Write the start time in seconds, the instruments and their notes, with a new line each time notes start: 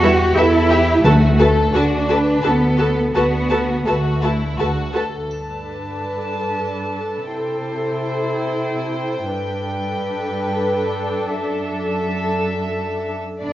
Already playing: double bass section E2, cello section F#4
0.02 viola section G3 E4, violin section G4 B4 E5
0.36 double bass section E2, cello section E4, viola section G4, violin section A4 B4 E5
0.70 viola section G4, violin section G4 B4 E5
1.04 double bass section D2, timpani D3, cello section A3, viola section F#4 A4, violin section F#4 B4 A5
1.39 viola section F#4 A4, violin section A4 B4 A5
1.73 double bass section D2, cello section D4, viola section F#4 A4, violin section F#4 B4 A5
2.09 viola section F#4 A4, violin section B4 A5
2.42 double bass section D2, cello section B3, viola section F#4 A4, violin section A4 B4 A5
2.78 viola section F#4 A4, violin section B4 A5
3.14 double bass section D2, cello section B3, violin section F#4 B4 A5, viola section F#4 A4
3.49 viola section F#4 A4, violin section B4 A5
3.86 double bass section D2, cello section A3, viola section F#4 A4, violin section F#4 B4 A5
4.22 violin section E4 B4 A5, viola section F#4 A4
4.58 double bass section D2, violin section F#4 B4 A5, viola section F#4 A4
4.93 viola section F#4 A4, violin section A4 B4 A5
5.28 cello section G2, viola section D4 A4, violin section B4 A5, triangle
7.30 cello section C3, viola section E4, violin section C5 G5
9.30 cello section G2, viola section D4 A4, violin section B4
11.32 cello section F#2, violin section A4 E5
13.42 double bass section G1, viola section B3 A4, cello section D4, violin section D5